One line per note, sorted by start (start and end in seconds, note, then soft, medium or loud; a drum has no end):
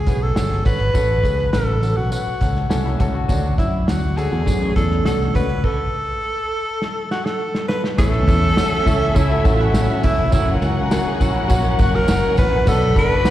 0.00 0.24 G#4 medium
0.06 0.33 B1 medium
0.06 0.29 C#4 medium
0.06 0.29 F#4 medium
0.06 0.29 B4 medium
0.06 kick medium
0.06 snare soft
0.06 closed hi-hat medium
0.06 tambourine soft
0.22 0.66 A4 medium
0.35 0.62 G1 medium
0.35 0.58 C#4 medium
0.35 0.58 F#4 medium
0.35 0.58 G#4 medium
0.35 snare loud
0.35 closed hi-hat medium
0.35 tambourine medium
0.51 snare soft
0.64 0.92 G#1 medium
0.64 0.87 C#4 medium
0.64 0.87 F#4 medium
0.64 0.88 B4 medium
0.64 1.50 B4 loud
0.64 kick loud
0.64 closed hi-hat medium
0.64 tambourine soft
0.80 closed hi-hat soft
0.93 1.20 A1 medium
0.93 1.16 C#4 medium
0.93 1.17 F#4 medium
0.93 1.17 A4 loud
0.93 kick loud
0.93 closed hi-hat medium
0.93 tambourine medium
1.23 1.50 C#2 medium
1.23 1.45 C#4 medium
1.23 1.46 F#4 medium
1.23 1.46 G#4 medium
1.23 kick medium
1.23 closed hi-hat medium
1.23 tambourine soft
1.52 1.92 A1 medium
1.52 1.75 C#4 medium
1.52 1.75 F#4 medium
1.52 1.98 A4 medium
1.52 1.75 A4 medium
1.52 snare loud
1.52 closed hi-hat medium
1.52 tambourine medium
1.81 2.04 C#4 medium
1.81 2.04 F#4 medium
1.81 2.05 A4 medium
1.81 closed hi-hat medium
1.81 tambourine medium
1.97 2.10 B1 medium
1.97 2.12 F#4 medium
2.10 2.33 C#4 medium
2.10 2.34 F#4 medium
2.10 2.96 F#4 medium
2.10 2.34 B4 medium
2.10 closed hi-hat medium
2.10 tambourine medium
2.27 muted fretless electric bass stroke soft
2.40 2.67 C#2 medium
2.40 2.63 C#4 medium
2.40 2.63 F#4 medium
2.40 2.64 A4 medium
2.40 kick medium
2.40 snare soft
2.40 closed hi-hat medium
2.40 tambourine soft
2.56 snare soft
2.69 2.96 C2 medium
2.69 2.85 A3 medium
2.69 2.92 C#4 medium
2.69 2.84 C#4 medium
2.69 2.93 F#4 medium
2.69 2.93 A4 loud
2.69 snare loud
2.69 closed hi-hat medium
2.69 tambourine medium
2.85 3.13 C#4 medium
2.85 3.13 E4 medium
2.85 snare soft
2.99 3.26 C#2 medium
2.99 3.22 C#4 loud
2.99 3.22 F#4 loud
2.99 3.22 A4 loud
2.99 kick medium
2.99 closed hi-hat medium
2.99 tambourine medium
3.15 3.43 F#4 medium
3.28 3.55 D2 medium
3.28 3.51 C#4 loud
3.28 3.51 D4 loud
3.28 3.52 F#4 loud
3.28 kick loud
3.28 closed hi-hat medium
3.28 tambourine medium
3.58 3.84 F#2 medium
3.58 3.80 C#4 medium
3.58 3.81 D4 medium
3.58 3.90 E4 medium
3.58 3.81 E4 medium
3.58 kick medium
3.58 closed hi-hat medium
3.58 tambourine soft
3.86 4.27 D2 medium
3.86 4.09 C#4 medium
3.86 4.10 D4 medium
3.86 4.10 F#4 medium
3.86 4.19 F#4 medium
3.86 snare loud
3.86 closed hi-hat medium
3.86 tambourine medium
4.17 4.39 C#4 medium
4.17 4.39 D4 medium
4.17 4.31 F#4 medium
4.17 4.76 G#4 medium
4.17 4.31 A4 medium
4.17 4.40 A4 medium
4.17 closed hi-hat medium
4.17 tambourine medium
4.32 4.45 E2 medium
4.32 4.45 D4 medium
4.32 4.46 F#4 medium
4.46 4.73 F#2 medium
4.46 4.61 B3 medium
4.46 4.68 C#4 medium
4.46 4.60 D4 medium
4.46 4.69 D4 medium
4.46 4.69 G#4 medium
4.46 kick medium
4.46 closed hi-hat medium
4.46 tambourine medium
4.61 5.46 A3 soft
4.61 5.45 C#4 medium
4.75 5.02 E2 medium
4.75 4.98 C#4 medium
4.75 4.98 D4 medium
4.75 4.98 E4 medium
4.75 5.03 A4 loud
4.75 kick medium
4.75 snare soft
4.75 closed hi-hat medium
4.75 tambourine medium
4.90 snare soft
5.04 5.31 C2 medium
5.04 5.27 C#4 medium
5.04 5.27 D4 medium
5.04 5.28 F#4 medium
5.04 5.33 A4 medium
5.04 snare loud
5.04 closed hi-hat medium
5.04 tambourine loud
5.21 snare soft
5.34 5.61 C#2 medium
5.34 5.56 C#4 medium
5.34 5.57 D4 medium
5.34 5.57 F#4 medium
5.34 5.66 B4 loud
5.34 kick medium
5.34 closed hi-hat medium
5.34 tambourine medium
5.49 closed hi-hat soft
5.64 7.11 A4 loud
5.64 kick loud
5.64 crash medium
6.82 snare medium
7.11 7.27 F#4 medium
7.11 snare medium
7.25 7.68 A4 medium
7.25 snare medium
7.55 snare medium
7.69 7.82 B4 medium
7.69 snare loud
7.84 snare medium
7.97 8.28 A1 loud
7.97 8.20 E3 loud
7.97 8.20 A3 loud
7.97 8.21 C#4 medium
7.97 10.29 C#4 medium
7.97 8.21 E4 loud
7.97 10.29 A4 medium
7.97 9.18 A4 loud
7.97 10.29 E5 medium
7.97 kick loud
7.97 ride medium
7.97 tambourine medium
8.14 ride soft
8.26 8.54 E2 loud
8.26 8.49 E3 medium
8.26 8.50 A3 medium
8.26 8.50 C#4 medium
8.26 8.50 E4 medium
8.26 kick medium
8.26 ride medium
8.26 tambourine soft
8.56 8.79 E3 medium
8.56 8.79 A3 medium
8.56 8.79 C#4 medium
8.56 8.79 F#4 medium
8.56 snare loud
8.56 ride medium
8.56 tambourine medium
8.72 muted fretless electric bass stroke medium
8.85 9.12 C#2 medium
8.85 9.08 E3 medium
8.85 9.08 A3 medium
8.85 9.09 C#4 medium
8.85 9.09 E4 loud
8.85 kick medium
8.85 ride medium
8.85 tambourine medium
9.14 9.42 C#2 medium
9.14 9.37 E3 medium
9.14 9.37 A3 medium
9.14 9.38 C#4 medium
9.14 9.38 E4 loud
9.14 9.55 E4 loud
9.14 kick medium
9.14 ride medium
9.14 tambourine medium
9.31 9.44 F#4 medium
9.31 9.45 A4 medium
9.43 9.71 A1 medium
9.43 9.66 E3 medium
9.43 9.66 A3 medium
9.43 9.67 C#4 medium
9.43 9.67 E4 medium
9.43 9.59 F#4 medium
9.43 kick loud
9.43 snare soft
9.43 ride medium
9.43 tambourine medium
9.53 9.61 F4 medium
9.59 9.88 C#4 medium
9.59 9.88 E4 medium
9.59 10.04 F#4 medium
9.59 snare soft
9.73 9.87 A1 loud
9.73 9.96 E3 medium
9.73 9.96 A3 medium
9.73 9.96 C#4 medium
9.73 9.96 E4 medium
9.73 snare loud
9.73 ride medium
9.73 tambourine loud
9.89 10.31 A3 medium
9.89 10.31 C#4 medium
9.89 snare soft
10.02 10.17 E1 loud
10.02 10.25 E3 medium
10.02 10.25 A3 medium
10.02 10.26 C#4 medium
10.02 10.31 E4 medium
10.02 10.26 F#4 medium
10.02 kick loud
10.02 open hi-hat medium
10.02 ride medium
10.02 tambourine medium
10.18 10.31 F1 medium
10.18 ride soft
10.32 10.58 F#1 loud
10.32 10.54 F#3 medium
10.32 10.55 A#3 loud
10.32 10.55 C#4 medium
10.32 12.63 C#4 medium
10.32 10.55 E4 loud
10.32 10.57 E4 medium
10.32 12.63 A#4 medium
10.32 12.63 F#5 loud
10.32 kick loud
10.32 hi-hat pedal medium
10.32 ride medium
10.32 tambourine medium
10.48 ride soft
10.55 10.65 F4 medium
10.60 10.88 C#2 loud
10.60 10.83 F#3 medium
10.60 10.84 A#3 medium
10.60 10.84 C#4 medium
10.60 10.84 E4 medium
10.60 11.53 F#4 medium
10.60 ride medium
10.60 tambourine soft
10.90 11.13 F#3 medium
10.90 11.13 A#3 medium
10.90 11.13 C#4 medium
10.90 11.14 F#4 medium
10.90 11.06 F#4 medium
10.90 11.05 A#4 medium
10.90 snare loud
10.90 ride medium
10.90 tambourine medium
11.06 11.21 E4 medium
11.06 11.20 G#4 medium
11.06 muted fretless electric bass stroke soft
11.20 11.46 A#1 medium
11.20 11.42 F#3 medium
11.20 11.43 A#3 medium
11.20 11.43 C#4 medium
11.20 11.43 E4 medium
11.20 11.35 F#4 medium
11.20 kick medium
11.20 ride medium
11.20 tambourine medium
11.35 11.50 C#4 medium
11.35 11.49 E4 medium
11.48 11.76 A#1 loud
11.48 11.71 F#3 loud
11.48 11.71 A#3 medium
11.48 11.72 C#4 loud
11.48 11.72 F#4 loud
11.48 11.64 F#4 medium
11.48 kick loud
11.48 ride medium
11.48 tambourine loud
11.65 12.49 F#3 medium
11.65 12.48 A#3 medium
11.77 12.05 F#1 medium
11.77 12.00 F#3 medium
11.77 12.01 A#3 medium
11.77 12.01 C#4 medium
11.77 12.01 F#4 medium
11.77 11.97 F#4 medium
11.77 kick loud
11.77 snare soft
11.77 ride medium
11.77 tambourine medium
11.94 12.38 A#4 loud
11.94 snare soft
12.07 12.22 F#1 medium
12.07 12.30 F#3 medium
12.07 12.30 A#3 medium
12.07 12.30 C#4 medium
12.07 12.31 E4 medium
12.07 snare loud
12.07 ride medium
12.07 tambourine loud
12.36 12.51 A1 medium
12.36 12.59 F#3 medium
12.36 12.59 A#3 medium
12.36 12.60 C#4 medium
12.36 12.60 E4 medium
12.36 12.70 B4 loud
12.36 kick medium
12.36 open hi-hat medium
12.36 ride medium
12.36 tambourine medium
12.52 12.66 A#1 medium
12.52 ride soft
12.65 12.93 B1 loud
12.65 12.88 F#3 medium
12.65 12.89 B3 loud
12.65 12.89 D4 medium
12.65 13.30 D4 medium
12.65 13.30 F#4 medium
12.65 12.89 F#4 loud
12.65 12.97 A4 loud
12.65 13.30 B5 loud
12.65 kick loud
12.65 hi-hat pedal medium
12.65 ride medium
12.65 tambourine medium
12.82 ride soft
12.95 13.22 F#1 loud
12.95 13.17 F#3 medium
12.95 13.18 B3 medium
12.95 13.18 D4 medium
12.95 13.18 A4 medium
12.95 kick loud
12.95 ride medium
12.95 tambourine medium
12.99 13.30 B4 loud
13.24 13.30 D2 medium
13.24 13.30 F#3 medium
13.24 13.30 B3 medium
13.24 13.30 D4 medium
13.24 13.30 F#4 medium
13.24 snare loud
13.24 ride medium
13.24 tambourine medium